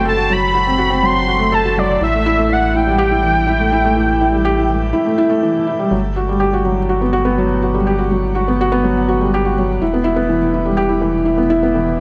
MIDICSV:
0, 0, Header, 1, 4, 480
1, 0, Start_track
1, 0, Key_signature, 1, "major"
1, 0, Tempo, 487805
1, 59, Time_signature, 4, 2, 24, 8
1, 11809, End_track
2, 0, Start_track
2, 0, Title_t, "Soft synth lead"
2, 0, Program_c, 0, 80
2, 85, Note_on_c, 0, 81, 107
2, 320, Note_on_c, 0, 83, 125
2, 335, Note_off_c, 0, 81, 0
2, 1037, Note_on_c, 0, 84, 119
2, 1052, Note_off_c, 0, 83, 0
2, 1516, Note_on_c, 0, 81, 113
2, 1530, Note_off_c, 0, 84, 0
2, 1757, Note_on_c, 0, 74, 98
2, 1771, Note_off_c, 0, 81, 0
2, 1988, Note_off_c, 0, 74, 0
2, 2003, Note_on_c, 0, 76, 110
2, 2486, Note_on_c, 0, 78, 96
2, 2501, Note_off_c, 0, 76, 0
2, 2716, Note_on_c, 0, 79, 106
2, 2731, Note_off_c, 0, 78, 0
2, 5348, Note_off_c, 0, 79, 0
2, 11809, End_track
3, 0, Start_track
3, 0, Title_t, "Felt piano"
3, 0, Program_c, 1, 0
3, 0, Control_c, 1, 64, 127
3, 0, Note_on_c, 1, 54, 85
3, 0, Note_on_c, 1, 57, 71
3, 0, Note_on_c, 1, 60, 101
3, 0, Note_on_c, 1, 66, 72
3, 0, Note_on_c, 1, 69, 98
3, 50, Note_off_c, 1, 69, 0
3, 50, Note_on_c, 1, 69, 94
3, 168, Note_off_c, 1, 69, 0
3, 170, Note_off_c, 1, 66, 0
3, 170, Note_on_c, 1, 66, 81
3, 243, Note_off_c, 1, 66, 0
3, 296, Note_off_c, 1, 54, 0
3, 296, Note_on_c, 1, 54, 79
3, 411, Note_off_c, 1, 54, 0
3, 530, Note_on_c, 1, 66, 80
3, 648, Note_off_c, 1, 66, 0
3, 658, Note_off_c, 1, 60, 0
3, 658, Note_on_c, 1, 60, 80
3, 771, Note_on_c, 1, 66, 97
3, 772, Note_off_c, 1, 60, 0
3, 886, Note_on_c, 1, 60, 97
3, 889, Note_off_c, 1, 66, 0
3, 1006, Note_off_c, 1, 60, 0
3, 1007, Note_on_c, 1, 54, 90
3, 1081, Note_off_c, 1, 54, 0
3, 1255, Note_on_c, 1, 66, 82
3, 1369, Note_off_c, 1, 57, 0
3, 1369, Note_on_c, 1, 57, 81
3, 1371, Note_off_c, 1, 66, 0
3, 1488, Note_off_c, 1, 57, 0
3, 1495, Note_on_c, 1, 69, 103
3, 1611, Note_off_c, 1, 69, 0
3, 1618, Note_on_c, 1, 66, 77
3, 1687, Note_off_c, 1, 66, 0
3, 1743, Note_on_c, 1, 54, 77
3, 1855, Note_off_c, 1, 54, 0
3, 1977, Note_on_c, 1, 64, 76
3, 1993, Control_c, 1, 64, 0
3, 2092, Note_off_c, 1, 64, 0
3, 2102, Note_on_c, 1, 57, 74
3, 2159, Control_c, 1, 64, 127
3, 2215, Note_off_c, 1, 57, 0
3, 2225, Note_on_c, 1, 64, 109
3, 2336, Note_off_c, 1, 64, 0
3, 2340, Note_on_c, 1, 57, 91
3, 2450, Note_on_c, 1, 52, 77
3, 2454, Note_off_c, 1, 57, 0
3, 2523, Note_off_c, 1, 52, 0
3, 2705, Note_on_c, 1, 64, 72
3, 2816, Note_off_c, 1, 64, 0
3, 2824, Note_on_c, 1, 55, 79
3, 2935, Note_off_c, 1, 55, 0
3, 2936, Note_on_c, 1, 67, 111
3, 3051, Note_off_c, 1, 67, 0
3, 3064, Note_on_c, 1, 64, 79
3, 3130, Note_off_c, 1, 64, 0
3, 3181, Note_on_c, 1, 52, 76
3, 3294, Note_off_c, 1, 52, 0
3, 3415, Note_on_c, 1, 64, 86
3, 3531, Note_off_c, 1, 64, 0
3, 3539, Note_on_c, 1, 57, 78
3, 3653, Note_off_c, 1, 57, 0
3, 3664, Note_on_c, 1, 64, 103
3, 3775, Note_off_c, 1, 64, 0
3, 3783, Note_on_c, 1, 57, 95
3, 3895, Note_off_c, 1, 57, 0
3, 3901, Note_on_c, 1, 52, 82
3, 3968, Note_off_c, 1, 52, 0
3, 4145, Note_on_c, 1, 64, 81
3, 4251, Note_on_c, 1, 55, 71
3, 4256, Note_off_c, 1, 64, 0
3, 4369, Note_off_c, 1, 55, 0
3, 4377, Note_on_c, 1, 67, 104
3, 4492, Note_off_c, 1, 67, 0
3, 4497, Note_on_c, 1, 64, 79
3, 4566, Note_off_c, 1, 64, 0
3, 4622, Note_on_c, 1, 52, 75
3, 4734, Note_off_c, 1, 52, 0
3, 4851, Note_on_c, 1, 64, 90
3, 4969, Note_off_c, 1, 64, 0
3, 4975, Note_on_c, 1, 57, 79
3, 5091, Note_off_c, 1, 57, 0
3, 5096, Note_on_c, 1, 64, 100
3, 5211, Note_off_c, 1, 64, 0
3, 5212, Note_on_c, 1, 57, 99
3, 5329, Note_off_c, 1, 57, 0
3, 5339, Note_on_c, 1, 52, 91
3, 5407, Note_off_c, 1, 52, 0
3, 5578, Note_on_c, 1, 64, 76
3, 5693, Note_off_c, 1, 64, 0
3, 5700, Note_on_c, 1, 55, 80
3, 5813, Note_off_c, 1, 55, 0
3, 5815, Note_on_c, 1, 54, 78
3, 5830, Control_c, 1, 64, 0
3, 5885, Note_off_c, 1, 54, 0
3, 6001, Control_c, 1, 64, 127
3, 6063, Note_on_c, 1, 66, 75
3, 6175, Note_off_c, 1, 66, 0
3, 6189, Note_on_c, 1, 55, 74
3, 6297, Note_on_c, 1, 67, 97
3, 6298, Note_off_c, 1, 55, 0
3, 6412, Note_off_c, 1, 67, 0
3, 6426, Note_on_c, 1, 66, 77
3, 6491, Note_off_c, 1, 66, 0
3, 6541, Note_on_c, 1, 54, 76
3, 6654, Note_off_c, 1, 54, 0
3, 6780, Note_on_c, 1, 66, 81
3, 6893, Note_off_c, 1, 66, 0
3, 6902, Note_on_c, 1, 59, 74
3, 7014, Note_on_c, 1, 66, 97
3, 7015, Note_off_c, 1, 59, 0
3, 7130, Note_off_c, 1, 66, 0
3, 7133, Note_on_c, 1, 59, 103
3, 7250, Note_off_c, 1, 59, 0
3, 7262, Note_on_c, 1, 54, 86
3, 7329, Note_off_c, 1, 54, 0
3, 7501, Note_on_c, 1, 66, 78
3, 7614, Note_off_c, 1, 66, 0
3, 7619, Note_on_c, 1, 55, 77
3, 7733, Note_off_c, 1, 55, 0
3, 7742, Note_on_c, 1, 67, 93
3, 7854, Note_off_c, 1, 67, 0
3, 7856, Note_on_c, 1, 66, 71
3, 7926, Note_off_c, 1, 66, 0
3, 7979, Note_on_c, 1, 54, 75
3, 8093, Note_off_c, 1, 54, 0
3, 8216, Note_on_c, 1, 66, 85
3, 8332, Note_off_c, 1, 66, 0
3, 8344, Note_on_c, 1, 59, 83
3, 8455, Note_off_c, 1, 59, 0
3, 8470, Note_on_c, 1, 66, 104
3, 8579, Note_off_c, 1, 66, 0
3, 8580, Note_on_c, 1, 59, 107
3, 8693, Note_off_c, 1, 59, 0
3, 8698, Note_on_c, 1, 54, 85
3, 8767, Note_off_c, 1, 54, 0
3, 8938, Note_on_c, 1, 66, 82
3, 9053, Note_off_c, 1, 66, 0
3, 9061, Note_on_c, 1, 55, 77
3, 9174, Note_off_c, 1, 55, 0
3, 9190, Note_on_c, 1, 67, 104
3, 9298, Note_off_c, 1, 67, 0
3, 9299, Note_on_c, 1, 66, 76
3, 9368, Note_off_c, 1, 66, 0
3, 9425, Note_on_c, 1, 54, 78
3, 9536, Note_off_c, 1, 54, 0
3, 9658, Note_on_c, 1, 64, 80
3, 9673, Control_c, 1, 64, 0
3, 9772, Note_off_c, 1, 64, 0
3, 9775, Note_on_c, 1, 59, 78
3, 9826, Control_c, 1, 64, 127
3, 9881, Note_on_c, 1, 64, 103
3, 9891, Note_off_c, 1, 59, 0
3, 10001, Note_on_c, 1, 59, 97
3, 10004, Note_off_c, 1, 64, 0
3, 10124, Note_off_c, 1, 59, 0
3, 10127, Note_on_c, 1, 52, 84
3, 10201, Note_off_c, 1, 52, 0
3, 10369, Note_on_c, 1, 64, 79
3, 10483, Note_on_c, 1, 55, 81
3, 10488, Note_off_c, 1, 64, 0
3, 10597, Note_on_c, 1, 67, 102
3, 10605, Note_off_c, 1, 55, 0
3, 10714, Note_on_c, 1, 64, 79
3, 10722, Note_off_c, 1, 67, 0
3, 10795, Note_off_c, 1, 64, 0
3, 10837, Note_on_c, 1, 52, 79
3, 10962, Note_off_c, 1, 52, 0
3, 11073, Note_on_c, 1, 64, 83
3, 11194, Note_on_c, 1, 59, 77
3, 11200, Note_off_c, 1, 64, 0
3, 11315, Note_on_c, 1, 64, 101
3, 11320, Note_off_c, 1, 59, 0
3, 11441, Note_off_c, 1, 64, 0
3, 11443, Note_on_c, 1, 59, 93
3, 11562, Note_on_c, 1, 52, 80
3, 11565, Note_off_c, 1, 59, 0
3, 11639, Note_off_c, 1, 52, 0
3, 11809, End_track
4, 0, Start_track
4, 0, Title_t, "Sub bass"
4, 0, Program_c, 2, 38
4, 0, Note_on_c, 2, 30, 83
4, 1951, Note_off_c, 2, 30, 0
4, 1974, Note_on_c, 2, 33, 88
4, 4856, Note_off_c, 2, 33, 0
4, 5816, Note_on_c, 2, 31, 87
4, 9633, Note_off_c, 2, 31, 0
4, 9657, Note_on_c, 2, 28, 85
4, 11809, Note_off_c, 2, 28, 0
4, 11809, End_track
0, 0, End_of_file